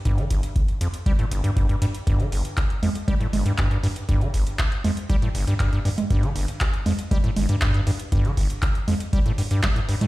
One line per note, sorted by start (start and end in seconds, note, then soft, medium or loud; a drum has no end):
0.05 0.20 G2 loud
0.05 kick loud
0.05 closed hi-hat soft
0.18 0.25 D3 loud
0.18 closed hi-hat soft
0.30 0.41 G1 medium
0.30 kick medium
0.30 closed hi-hat medium
0.43 closed hi-hat soft
0.56 kick loud
0.56 closed hi-hat soft
0.68 closed hi-hat soft
0.81 0.88 F2 medium
0.81 closed hi-hat medium
0.94 closed hi-hat soft
1.06 1.13 G3 loud
1.06 kick loud
1.06 closed hi-hat soft
1.19 1.26 A2 medium
1.19 closed hi-hat soft
1.31 1.42 G1 medium
1.31 closed hi-hat medium
1.44 1.51 G2 medium
1.44 closed hi-hat soft
1.56 1.67 G2 medium
1.56 kick loud
1.56 closed hi-hat soft
1.69 1.76 G2 medium
1.69 closed hi-hat soft
1.82 1.86 G2 medium
1.82 closed hi-hat medium
1.94 closed hi-hat soft
2.07 2.21 G2 medium
2.07 kick loud
2.07 closed hi-hat soft
2.20 2.27 D3 medium
2.20 closed hi-hat soft
2.32 2.43 G1 medium
2.32 open hi-hat loud
2.45 closed hi-hat soft
2.57 kick loud
2.57 clap loud
2.57 closed hi-hat soft
2.70 closed hi-hat soft
2.83 2.90 F2 medium
2.83 open hi-hat medium
2.83 low conga medium
2.95 closed hi-hat soft
3.08 3.15 G3 loud
3.08 kick loud
3.08 closed hi-hat soft
3.08 low conga medium
3.20 3.27 A2 medium
3.20 closed hi-hat soft
3.33 3.43 G1 medium
3.33 open hi-hat medium
3.33 low conga medium
3.46 3.53 G2 medium
3.46 closed hi-hat soft
3.58 3.69 G2 medium
3.58 kick loud
3.58 clap loud
3.58 closed hi-hat soft
3.71 3.78 G2 medium
3.71 closed hi-hat soft
3.83 3.88 G2 medium
3.83 open hi-hat medium
3.96 closed hi-hat soft
4.09 4.23 G2 medium
4.09 kick loud
4.09 closed hi-hat soft
4.21 4.28 D3 medium
4.21 closed hi-hat soft
4.34 4.44 G1 medium
4.34 kick medium
4.34 open hi-hat loud
4.47 closed hi-hat soft
4.59 kick loud
4.59 clap loud
4.59 closed hi-hat soft
4.72 closed hi-hat soft
4.84 4.91 F2 medium
4.84 open hi-hat medium
4.84 low conga medium
4.97 closed hi-hat soft
5.09 5.17 G3 loud
5.09 kick loud
5.09 closed hi-hat soft
5.22 5.29 A2 medium
5.22 closed hi-hat soft
5.35 5.45 G1 medium
5.35 open hi-hat medium
5.47 5.54 G2 medium
5.47 closed hi-hat soft
5.60 5.70 G2 medium
5.60 kick loud
5.60 clap loud
5.60 closed hi-hat soft
5.73 5.80 G2 medium
5.73 closed hi-hat soft
5.85 5.89 G2 loud
5.85 open hi-hat medium
5.98 closed hi-hat soft
5.98 low conga medium
6.10 6.25 G2 loud
6.10 kick loud
6.10 closed hi-hat soft
6.23 6.30 D3 loud
6.23 closed hi-hat soft
6.36 6.46 G1 medium
6.36 open hi-hat medium
6.48 closed hi-hat medium
6.61 kick loud
6.61 clap loud
6.61 closed hi-hat medium
6.74 closed hi-hat soft
6.86 6.93 F2 medium
6.86 open hi-hat medium
6.86 low conga medium
6.99 closed hi-hat medium
7.11 7.18 G3 loud
7.11 kick loud
7.11 closed hi-hat soft
7.11 low conga medium
7.24 7.31 A2 medium
7.24 closed hi-hat soft
7.36 7.47 G1 medium
7.36 open hi-hat medium
7.36 low conga medium
7.49 7.56 G2 medium
7.49 closed hi-hat soft
7.61 7.72 G2 medium
7.61 kick loud
7.61 clap loud
7.61 closed hi-hat soft
7.74 7.81 G2 medium
7.74 closed hi-hat soft
7.87 7.91 G2 medium
7.87 open hi-hat medium
7.99 closed hi-hat medium
8.12 8.26 G2 loud
8.12 kick loud
8.12 closed hi-hat medium
8.25 8.32 D3 loud
8.25 closed hi-hat soft
8.37 8.48 G1 medium
8.37 kick medium
8.37 open hi-hat medium
8.50 closed hi-hat medium
8.62 kick loud
8.62 clap loud
8.62 closed hi-hat medium
8.75 closed hi-hat soft
8.88 8.95 F2 medium
8.88 open hi-hat medium
8.88 low conga medium
9.00 closed hi-hat medium
9.13 9.20 G3 loud
9.13 kick loud
9.13 closed hi-hat soft
9.26 9.33 A2 medium
9.26 closed hi-hat soft
9.38 9.42 G2 medium
9.38 open hi-hat loud
9.51 9.61 G2 medium
9.51 closed hi-hat soft
9.63 9.68 G3 loud
9.63 kick loud
9.63 clap loud
9.63 closed hi-hat medium
9.76 9.80 A2 medium
9.76 closed hi-hat soft
9.89 9.96 G2 medium
9.89 open hi-hat medium
10.01 10.07 A2 medium
10.01 closed hi-hat medium
10.01 low conga medium